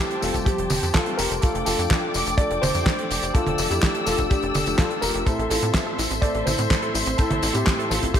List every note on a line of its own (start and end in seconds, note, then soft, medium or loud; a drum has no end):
0.00 0.68 F3 loud
0.00 0.68 G3 loud
0.00 0.68 A3 medium
0.00 0.68 C4 medium
0.00 0.21 E4 medium
0.00 0.23 G4 loud
0.00 1.39 G4 medium
0.00 1.39 C5 medium
0.00 5.23 G5 medium
0.00 1.39 A5 medium
0.11 closed hi-hat medium
0.21 0.32 F1 loud
0.21 0.45 F4 medium
0.21 0.44 A4 loud
0.21 snare soft
0.21 open hi-hat loud
0.21 tambourine medium
0.34 0.44 F1 medium
0.34 kick medium
0.34 closed hi-hat medium
0.34 tambourine soft
0.45 0.92 C4 medium
0.45 0.91 G4 loud
0.45 kick loud
0.45 closed hi-hat medium
0.45 tambourine soft
0.58 0.68 F1 medium
0.58 closed hi-hat medium
0.70 0.80 F1 loud
0.70 open hi-hat loud
0.70 high tom medium
0.70 tambourine medium
0.83 0.92 F2 medium
0.83 closed hi-hat medium
0.83 tambourine soft
0.93 1.17 F4 medium
0.93 1.16 A4 loud
0.93 kick loud
0.93 snare loud
0.93 clap medium
0.93 closed hi-hat medium
1.06 1.40 G3 loud
1.06 1.40 A3 medium
1.06 1.40 C4 medium
1.06 1.40 F4 loud
1.06 closed hi-hat soft
1.18 1.28 F1 medium
1.18 1.41 G4 medium
1.18 1.43 A#4 loud
1.18 open hi-hat loud
1.18 tambourine medium
1.31 1.40 F1 medium
1.31 closed hi-hat medium
1.31 tambourine soft
1.42 2.72 F3 medium
1.42 2.72 A3 medium
1.42 2.72 D4 medium
1.42 2.72 F4 loud
1.42 1.65 F4 medium
1.42 1.64 A4 loud
1.42 8.20 A4 medium
1.42 5.23 D5 medium
1.42 3.33 D6 medium
1.42 kick loud
1.42 closed hi-hat medium
1.42 tambourine soft
1.55 1.64 F1 medium
1.55 closed hi-hat medium
1.65 1.76 F1 loud
1.65 2.35 F4 medium
1.65 2.38 A4 loud
1.65 open hi-hat loud
1.65 tambourine medium
1.79 1.88 F2 medium
1.79 closed hi-hat medium
1.79 tambourine soft
1.90 kick loud
1.90 snare loud
1.90 clap medium
1.90 closed hi-hat medium
2.14 2.24 F1 medium
2.14 open hi-hat loud
2.14 tambourine medium
2.26 2.36 F1 medium
2.26 closed hi-hat medium
2.26 tambourine soft
2.38 2.61 A4 medium
2.38 2.63 D5 loud
2.38 kick loud
2.38 closed hi-hat medium
2.51 2.60 F1 medium
2.51 closed hi-hat medium
2.62 2.72 F1 loud
2.62 3.31 A4 medium
2.62 3.30 C5 loud
2.62 open hi-hat loud
2.62 high tom medium
2.62 tambourine medium
2.75 2.84 F2 medium
2.75 3.32 F3 medium
2.75 3.32 A3 medium
2.75 3.32 D4 medium
2.75 3.32 G4 medium
2.75 closed hi-hat medium
2.75 tambourine soft
2.86 kick loud
2.86 snare loud
2.86 clap medium
2.86 closed hi-hat medium
2.99 closed hi-hat medium
3.11 3.20 F1 medium
3.11 open hi-hat loud
3.11 tambourine medium
3.22 3.32 F1 medium
3.22 closed hi-hat medium
3.22 tambourine soft
3.34 4.52 F3 loud
3.34 4.52 A3 medium
3.34 4.52 D4 medium
3.34 3.69 F4 medium
3.34 3.71 A4 loud
3.34 4.52 A4 loud
3.34 5.25 E6 medium
3.34 kick loud
3.34 closed hi-hat loud
3.34 tambourine soft
3.46 3.56 F1 medium
3.46 closed hi-hat medium
3.46 high tom medium
3.58 3.68 F1 loud
3.58 open hi-hat loud
3.58 tambourine medium
3.70 3.80 F2 medium
3.70 4.05 E4 medium
3.70 4.04 G4 medium
3.70 closed hi-hat medium
3.70 tambourine soft
3.82 kick loud
3.82 snare loud
3.82 clap medium
3.82 closed hi-hat medium
3.82 tambourine soft
3.95 closed hi-hat medium
4.06 4.16 F1 loud
4.06 4.29 F4 medium
4.06 4.28 A4 medium
4.06 snare soft
4.06 open hi-hat loud
4.06 tambourine medium
4.18 4.28 F1 medium
4.18 kick medium
4.18 closed hi-hat medium
4.18 tambourine soft
4.29 4.76 D4 medium
4.29 4.79 G4 loud
4.29 kick loud
4.29 closed hi-hat medium
4.29 tambourine soft
4.42 4.52 F1 medium
4.42 closed hi-hat soft
4.54 4.64 F1 loud
4.54 open hi-hat loud
4.54 high tom medium
4.54 tambourine medium
4.66 4.76 F1 medium
4.66 5.24 F3 medium
4.66 5.24 A3 medium
4.66 5.24 D4 medium
4.66 5.24 F4 loud
4.66 closed hi-hat medium
4.66 tambourine soft
4.78 5.01 F4 medium
4.78 5.03 A4 medium
4.78 kick loud
4.78 snare loud
4.78 clap medium
4.78 closed hi-hat medium
4.78 tambourine soft
4.90 closed hi-hat soft
5.02 5.12 F1 medium
5.02 5.25 G4 medium
5.02 5.27 A#4 loud
5.02 open hi-hat loud
5.02 tambourine medium
5.14 5.24 F1 medium
5.14 closed hi-hat medium
5.14 tambourine soft
5.26 6.56 A2 medium
5.26 6.56 A3 medium
5.26 6.56 C4 medium
5.26 5.49 E4 medium
5.26 5.48 A4 loud
5.26 6.56 A4 medium
5.26 8.20 C5 medium
5.26 5.38 C5 loud
5.26 8.20 E5 medium
5.26 6.56 E5 medium
5.26 8.20 C6 medium
5.26 kick loud
5.26 closed hi-hat medium
5.26 tambourine soft
5.39 5.48 A1 medium
5.39 5.44 A4 medium
5.39 closed hi-hat soft
5.50 5.60 A1 loud
5.50 5.56 E4 loud
5.50 6.19 F4 medium
5.50 6.22 A4 loud
5.50 open hi-hat loud
5.50 tambourine medium
5.62 5.72 A2 medium
5.62 5.72 C4 medium
5.62 closed hi-hat medium
5.62 tambourine soft
5.74 5.86 C5 medium
5.74 kick loud
5.74 snare loud
5.74 clap medium
5.74 closed hi-hat medium
5.74 tambourine soft
5.87 5.92 A4 loud
5.98 6.08 A1 medium
5.98 6.08 E4 medium
5.98 open hi-hat loud
5.98 tambourine medium
6.10 6.20 A1 medium
6.10 6.20 C4 medium
6.10 closed hi-hat medium
6.10 tambourine soft
6.22 6.45 A4 medium
6.22 6.34 C5 loud
6.22 6.47 D5 loud
6.22 kick loud
6.22 closed hi-hat medium
6.22 tambourine soft
6.35 6.44 A1 medium
6.35 6.40 A4 medium
6.35 closed hi-hat soft
6.46 6.56 A1 loud
6.46 6.52 E4 loud
6.46 7.15 A4 medium
6.46 7.14 C5 loud
6.46 open hi-hat loud
6.46 high tom medium
6.46 tambourine medium
6.58 6.68 A2 medium
6.58 7.16 A2 medium
6.58 7.16 A3 medium
6.58 6.68 C4 medium
6.58 7.16 C4 medium
6.58 7.16 E4 medium
6.58 7.16 C5 medium
6.58 closed hi-hat medium
6.58 tambourine soft
6.70 6.82 C5 medium
6.70 kick loud
6.70 snare loud
6.70 clap medium
6.70 closed hi-hat medium
6.70 tambourine soft
6.82 6.88 A4 loud
6.82 closed hi-hat soft
6.94 7.04 A1 medium
6.94 7.04 E4 medium
6.94 open hi-hat loud
6.94 tambourine medium
7.06 7.16 A1 medium
7.06 7.16 C4 medium
7.06 closed hi-hat medium
7.06 tambourine soft
7.18 8.20 A2 medium
7.18 8.20 A3 medium
7.18 8.20 C4 medium
7.18 8.20 E4 medium
7.18 7.53 E4 medium
7.18 7.55 A4 loud
7.18 8.20 A4 loud
7.18 7.30 C5 loud
7.18 kick loud
7.18 closed hi-hat medium
7.18 tambourine soft
7.30 7.40 A1 medium
7.30 7.36 A4 medium
7.30 closed hi-hat medium
7.30 high tom medium
7.42 7.52 A1 loud
7.42 7.48 E4 loud
7.42 open hi-hat loud
7.42 tambourine medium
7.53 7.64 A2 medium
7.53 7.64 C4 medium
7.53 7.88 E4 medium
7.53 7.91 G4 medium
7.53 closed hi-hat medium
7.53 tambourine soft
7.67 7.78 C5 medium
7.67 kick loud
7.67 snare loud
7.67 clap medium
7.67 closed hi-hat medium
7.67 tambourine soft
7.79 7.84 A4 loud
7.79 closed hi-hat medium
7.90 8.00 A1 loud
7.90 8.00 E4 medium
7.90 8.13 F4 medium
7.90 8.15 A4 medium
7.90 snare soft
7.90 open hi-hat loud
7.90 tambourine medium
8.02 8.12 A1 medium
8.02 8.12 C4 medium
8.02 kick medium
8.02 closed hi-hat medium
8.02 tambourine soft
8.13 8.20 E4 medium
8.13 8.20 G4 medium
8.13 8.20 C5 loud
8.13 kick loud
8.13 closed hi-hat loud
8.13 tambourine soft